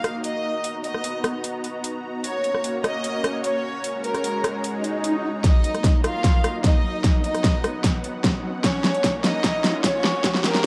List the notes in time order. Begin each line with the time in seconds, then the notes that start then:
Already playing: A#3 D#4 F#4 D#5 F5 A#5
0.04 cross-stick, closed hi-hat
0.24 D#5, closed hi-hat
0.64 B3, closed hi-hat
0.84 D#5, closed hi-hat
0.94 cross-stick
1.04 closed hi-hat
1.24 cross-stick, closed hi-hat
1.44 closed hi-hat
1.64 closed hi-hat
1.84 closed hi-hat
2.24 A#3 C#4 C#5, closed hi-hat
2.44 closed hi-hat
2.55 cross-stick
2.64 closed hi-hat
2.84 D#5, cross-stick, closed hi-hat
3.04 closed hi-hat
3.24 cross-stick, closed hi-hat
3.44 C#5, closed hi-hat
3.84 G#3, closed hi-hat
4.04 A#4, closed hi-hat
4.14 cross-stick, closed hi-hat
4.24 closed hi-hat
4.44 cross-stick, closed hi-hat
4.64 closed hi-hat, swell
4.84 closed hi-hat
5.04 closed hi-hat
5.44 F#3 A#3 D#4 D#5 A#5, kick, snare, closed hi-hat, riser
5.64 closed hi-hat
5.74 cross-stick, closed hi-hat
5.84 kick, snare, closed hi-hat
6.04 F4 F5, cross-stick, closed hi-hat
6.24 kick, snare, closed hi-hat
6.44 cross-stick, closed hi-hat
6.64 D#4 D#5, kick, snare, closed hi-hat
7.04 B3 F#5, kick, snare, closed hi-hat
7.24 D#4 D#5, closed hi-hat
7.34 cross-stick, closed hi-hat
7.44 kick, snare, closed hi-hat
7.64 cross-stick, closed hi-hat
7.84 kick, snare, closed hi-hat
8.04 closed hi-hat
8.24 kick, snare, closed hi-hat
8.64 A#3 C#4 C#5, kick, snare, closed hi-hat
8.84 snare, closed hi-hat
8.94 closed hi-hat
9.04 kick, snare, closed hi-hat
9.24 D#4 D#5, snare, closed hi-hat
9.44 kick, snare, closed hi-hat
9.64 snare, closed hi-hat
9.84 C#4 C#5, kick, snare, closed hi-hat
10.04 snare
10.24 G#3, kick, snare, closed hi-hat
10.34 snare
10.44 A#3 A#4, snare, closed hi-hat
10.54 snare, closed hi-hat